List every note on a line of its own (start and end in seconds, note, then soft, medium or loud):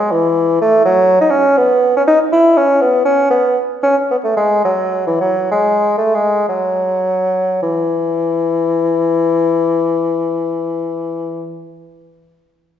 0.00 0.13 G#3 medium
0.12 0.61 E3 medium
0.61 0.85 A3 medium
0.85 1.20 F#3 medium
1.21 1.32 D#4 medium
1.31 1.59 C#4 medium
1.57 1.96 B3 medium
1.97 2.02 C#4 medium
2.08 2.19 D#4 medium
2.32 2.59 E4 medium
2.57 2.83 C#4 medium
2.81 3.05 B3 medium
3.05 3.30 C#4 medium
3.30 3.57 B3 medium
3.83 3.96 C#4 medium
4.11 4.17 B3 medium
4.24 4.36 A3 medium
4.37 4.64 G#3 medium
4.65 5.06 F#3 medium
5.07 5.20 E3 medium
5.21 5.51 F#3 medium
5.52 5.97 G#3 medium
5.98 6.16 A3 medium
6.15 6.48 G#3 medium
6.49 7.60 F#3 medium
7.62 11.64 E3 medium